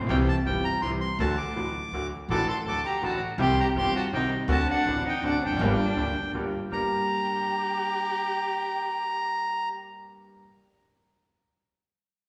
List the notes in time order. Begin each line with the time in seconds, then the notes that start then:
0.01 A#1 B1
0.06 B1 C2 C3 E3 G3 C4 G5
0.10 G4
0.28 A5
0.45 G1 G2 E3 G3 C4 G4 G5
0.65 A#5
0.81 C2 C3 E3 G3 C4 G4 C6
1.01 C6
1.19 D2 D3 F#3 A3 F#4 A5
1.37 D6
1.55 A1 A2 D3 F#3 A3 F#4
1.91 D2 D3 F#3 A3 F#4
2.29 A1 A2 D3 F#3 A3 F#4 A4 D6
2.48 A4 C6
2.65 D2 D3 F#3 A3 F#4 A4 D6
2.86 G4 A#5
3.02 A1 A2 D3 F#3 A3 F#4 A5
3.38 C2 C3 D#3 G3 C4 G4 C6
3.60 G4 A#5
3.75 G1 G2 D#3 G3 C4 G4 C6
3.79 G4
3.96 F#4 A5
4.12 C2 C3 D#3 G3 C4 D#4 G4 G5
4.48 D2 D3 A3 C4 F#4 A5
4.69 D4 F#5
4.85 A1 A2 D3 A3 C4 F#4
5.06 D#4 G5
5.22 D2 D3 A3 C4 D4 F#4 F#5
5.43 E1 E2 D4 G5
5.51 F1 F#1 F2
5.57 G1 F#2 D3 G3
5.61 G1 G2 A#3 G4
5.96 D2 D3 G3 A#3 G4
6.33 G1 G2 D3 G3 A#3 G4
6.71 G1 G2 A#3 D4 G4 A#5